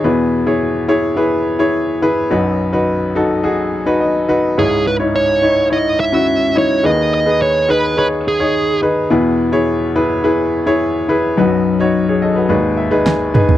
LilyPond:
<<
  \new Staff \with { instrumentName = "Lead electric guitar" } { \time 4/4 \key e \major \tempo 4 = 106 r1 | r1 | gis'8 b'8 cis''4 dis''8 e''4 cis''8 | dis''8 dis''8 cis''8 b'8 b'8 gis'4 r8 |
r1 | r1 | }
  \new Staff \with { instrumentName = "Upright piano" } { \time 4/4 \key e \major << { r1 | r2. dis''4 | r1 | r1 |
r1 | r4 r16 <gis' cis''>16 <a' dis''>16 <fis' b'>8 r16 e''8 gis''4 | } \\ { <e' gis' b'>8 r16 <e' gis' cis''>8 r16 <e' gis' cis''>16 r16 <e' gis' b'>8 r16 <e' gis' cis''>8 r16 <e' gis' b'>16 r16 | <dis' fis' b'>8 r16 <dis' fis' b'>8 r16 <dis' fis' a'>16 r16 <dis' fis' gis'>8 r16 <dis' fis' b'>8 r16 <dis' fis' b'>16 r16 | <dis' e' cis''>8 r16 <dis' e' cis''>8 r16 <dis' e' cis''>16 r16 <dis' e' cis''>8 r16 <cis' e' fis'>8 r16 <dis' e' cis''>16 r16 | <dis' gis' b'>8 r16 <dis' gis' b'>8 r16 <dis' gis' b'>16 r16 <dis' gis' cis''>8 r16 <dis' gis' cis''>8 r16 <dis' gis' b'>16 r16 |
<e' gis' b'>8 r16 <e' gis' cis''>8 r16 <e' gis' b'>16 r16 <e' gis' b'>8 r16 <e' gis' cis''>8 r16 <e' gis' b'>16 r16 | <dis' fis' b'>8 r16 <dis' fis' cis''>8 r8. <dis' gis' b'>8 r16 <dis' gis' b'>8 r16 <dis' gis' b'>16 r16 | } >> }
  \new Staff \with { instrumentName = "Upright piano" } { \clef bass \time 4/4 \key e \major <e, b,>1 | <b,, fis,>1 | <cis, gis,>1 | <dis, dis>1 |
<e, b,>1 | <b,, fis,>2 <gis,, dis,>2 | }
  \new DrumStaff \with { instrumentName = "Drums" } \drummode { \time 4/4 r4 r4 r4 r4 | r4 r4 r4 r4 | r4 r4 r4 r4 | r4 r4 r4 r4 |
r4 r4 r4 r4 | r4 r4 r4 sn8 toml16 tomfh16 | }
>>